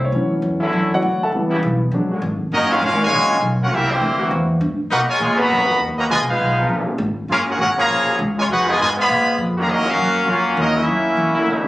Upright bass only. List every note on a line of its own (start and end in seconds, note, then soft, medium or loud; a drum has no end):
0.00 0.12 C2 loud
0.12 0.41 D2 loud
0.42 0.72 E2 loud
0.73 1.02 F#2 medium
1.02 1.32 D2 loud
1.32 1.62 C#2 medium
1.63 1.91 B1 loud
1.91 2.21 A#1 loud
2.22 2.51 G#1 loud
2.52 2.81 F#1 medium
2.81 3.10 G#1 loud
3.11 3.40 A#1 medium
3.41 3.70 B1 loud
3.71 4.00 C2 medium
4.01 4.30 D2 loud
4.31 4.60 E2 loud
4.61 4.78 G2 loud
4.79 muted upright bass stroke soft
4.91 5.07 B2 loud
5.08 muted upright bass stroke soft
5.20 5.50 A#2 loud
5.50 5.67 F#2 medium
5.68 muted upright bass stroke soft
5.80 6.09 D#2 loud
6.09 6.20 C#2 loud
6.20 6.29 B1 medium
6.30 6.38 G#1 medium
6.39 6.68 B1 loud
6.69 6.98 A#1 medium
6.98 7.28 G#1 loud
7.28 7.58 F#1 medium
7.59 7.76 G#1 loud
7.77 muted upright bass stroke soft
7.89 8.06 A#1 medium
8.07 muted upright bass stroke soft
8.19 8.48 C#2 loud
8.49 8.78 F2 medium
8.79 9.08 G#2 loud
9.08 9.37 A#2 medium
9.38 9.67 F2 loud
9.67 9.97 D#2 medium
9.97 10.27 F#2 loud
10.28 10.56 F2 medium
10.57 10.86 D#2 loud
10.87 11.16 F#2 medium
11.17 11.34 E2 loud
11.35 muted upright bass stroke soft
11.47 11.64 D2 medium
11.65 muted upright bass stroke soft